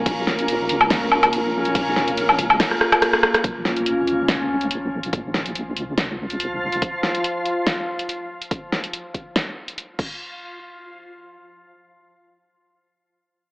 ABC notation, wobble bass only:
X:1
M:4/4
L:1/8
Q:"Swing 16ths" 1/4=142
K:Bbm
V:1 name="Wobble bass" clef=bass
B,,,3 D,,3 B,,,2 | B,,,3 D,, z4 | B,,,3 D,,3 B,,,2 | B,,,3 D,,3 C,,2 |
z8 | z8 | z8 | z8 |]